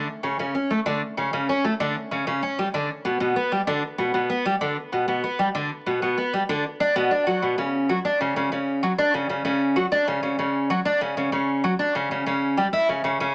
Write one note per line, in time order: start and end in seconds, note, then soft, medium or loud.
0.23 0.37 C#3 medium
0.39 0.53 C#3 medium
0.55 0.70 C#4 medium
0.70 0.79 A3 medium
0.86 1.01 D3 medium
1.17 1.31 C#3 medium
1.33 1.47 C#3 medium
1.49 1.64 C#4 medium
1.64 1.73 A3 medium
1.80 1.95 D3 loud
2.11 2.25 C#3 medium
2.27 2.41 C#3 medium
2.43 2.57 C#4 medium
2.59 2.67 G3 medium
2.74 2.89 D3 medium
3.05 3.19 B2 medium
3.20 3.34 B2 medium
3.36 3.51 B3 medium
3.52 3.61 G3 medium
3.67 3.82 D3 loud
3.98 4.12 B2 medium
4.14 4.28 B2 medium
4.30 4.45 B3 medium
4.45 4.54 G3 medium
4.61 4.76 D3 medium
4.92 5.06 B2 medium
5.08 5.22 B2 medium
5.24 5.38 B3 medium
5.39 5.48 G3 medium
5.55 5.70 D3 medium
5.86 6.00 B2 medium
6.02 6.16 B2 medium
6.18 6.32 B3 medium
6.33 6.42 G3 medium
6.49 6.64 D3 loud
6.80 6.94 D4 medium
6.96 7.10 B2 loud
7.11 7.25 D4 medium
7.27 7.41 F#3 medium
7.42 7.56 B2 medium
7.58 7.88 C#3 medium
7.89 7.98 F#3 medium
8.05 8.19 D4 medium
8.21 8.34 C#3 medium
8.36 8.50 C#3 medium
8.52 8.81 C#3 medium
8.83 8.92 F#3 medium
8.98 9.13 D4 loud
9.14 9.28 C#3 medium
9.29 9.44 C#3 medium
9.45 9.75 C#3 medium
9.76 9.85 F#3 medium
9.92 10.06 D4 loud
10.07 10.21 C#3 medium
10.23 10.37 C#3 medium
10.39 10.69 C#3 medium
10.70 10.79 F#3 medium
10.85 11.00 D4 loud
11.01 11.15 C#3 medium
11.17 11.31 C#3 medium
11.32 11.62 C#3 medium
11.64 11.73 F#3 medium
11.79 11.93 D4 loud
11.95 12.09 C#3 medium
12.11 12.25 C#3 medium
12.26 12.56 C#3 medium
12.57 12.67 G3 medium
12.73 12.87 E4 medium
12.89 13.03 C#3 medium
13.04 13.18 C#3 medium
13.20 13.35 C#3 medium